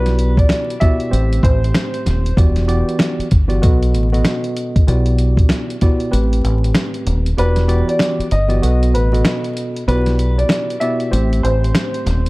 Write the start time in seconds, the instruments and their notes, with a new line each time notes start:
Already playing: fingered electric bass B1, tine electric piano B2 B3 E4 F#4 G4 D5, upright piano B4
0.06 snare, closed hi-hat
0.19 closed hi-hat
0.37 upright piano D5, kick, closed hi-hat
0.49 snare, closed hi-hat
0.70 closed hi-hat
0.80 tine electric piano B2 B3 E4 F#4 G4 D5, upright piano E5, kick, closed hi-hat
1.00 closed hi-hat
1.10 fingered electric bass A1, tine electric piano A2 A3 C4 G4 C5, closed hi-hat
1.33 closed hi-hat
1.43 fingered electric bass A1, upright piano C5, kick, closed hi-hat
1.64 closed hi-hat
1.74 snare, closed hi-hat
1.94 closed hi-hat
2.06 fingered electric bass D#1, snare, closed hi-hat
2.26 closed hi-hat
2.37 fingered electric bass E1, tine electric piano E3 B3 F#4 G4 D5, kick, closed hi-hat
2.56 snare, closed hi-hat
2.67 tine electric piano E3 B3 F#4 G4 D5, closed hi-hat
2.89 closed hi-hat
2.99 snare, closed hi-hat
3.19 muted fingered electric bass stroke, closed hi-hat
3.31 fingered electric bass G1, kick, closed hi-hat
3.48 tine electric piano E3 B3 F#4 G4 D5, closed hi-hat
3.62 fingered electric bass B1, tine electric piano B2 B3 F#4 A4 D#5, kick, closed hi-hat
3.83 closed hi-hat
3.94 fingered electric bass A1, closed hi-hat
4.12 tine electric piano B2 B3 F#4 A4 D#5, closed hi-hat
4.25 snare, closed hi-hat
4.44 closed hi-hat
4.56 closed hi-hat
4.76 kick, closed hi-hat
4.87 fingered electric bass B1, tine electric piano B2 B3 E4 F#4 G4 D5, closed hi-hat
5.06 closed hi-hat
5.19 closed hi-hat
5.37 kick, closed hi-hat
5.49 snare, closed hi-hat
5.70 closed hi-hat
5.81 tine electric piano B2 B3 E4 F#4 G4 D5, kick, closed hi-hat
6.00 closed hi-hat
6.10 fingered electric bass A1, tine electric piano A2 A3 C4 G4 B4, closed hi-hat
6.33 closed hi-hat
6.44 fingered electric bass A1, closed hi-hat
6.64 closed hi-hat
6.75 snare, closed hi-hat
6.94 closed hi-hat
7.07 fingered electric bass D#1, closed hi-hat
7.26 closed hi-hat
7.37 fingered electric bass E1, tine electric piano E3 B3 F#4 G4 D5, upright piano B4, closed hi-hat
7.56 snare, closed hi-hat
7.67 tine electric piano E3 B3 F#4 G4 D5, closed hi-hat
7.88 upright piano D5, closed hi-hat
7.99 snare, closed hi-hat
8.19 muted fingered electric bass stroke, closed hi-hat
8.31 fingered electric bass G1, upright piano D#5, closed hi-hat
8.48 tine electric piano E3 B3 F#4 G4 D5, closed hi-hat
8.62 fingered electric bass B1, tine electric piano B2 B3 F#4 A4 D#5, closed hi-hat
8.83 closed hi-hat
8.94 fingered electric bass A1, upright piano B4, closed hi-hat
9.12 tine electric piano B2 B3 F#4 A4 D#5, closed hi-hat
9.25 snare, closed hi-hat
9.44 closed hi-hat
9.57 closed hi-hat
9.76 closed hi-hat
9.88 fingered electric bass B1, tine electric piano B2 B3 E4 F#4 G4 D5, upright piano B4, closed hi-hat
10.06 snare, closed hi-hat
10.19 closed hi-hat
10.38 upright piano D5, closed hi-hat
10.49 snare, closed hi-hat
10.70 closed hi-hat
10.80 tine electric piano B2 B3 E4 F#4 G4 D5, upright piano E5, closed hi-hat
11.00 closed hi-hat
11.10 fingered electric bass A1, tine electric piano A2 A3 C4 G4 C5, closed hi-hat
11.33 closed hi-hat
11.43 fingered electric bass A1, upright piano C5, closed hi-hat
11.64 closed hi-hat
11.75 snare, closed hi-hat
11.94 closed hi-hat
12.06 fingered electric bass D#1, snare, closed hi-hat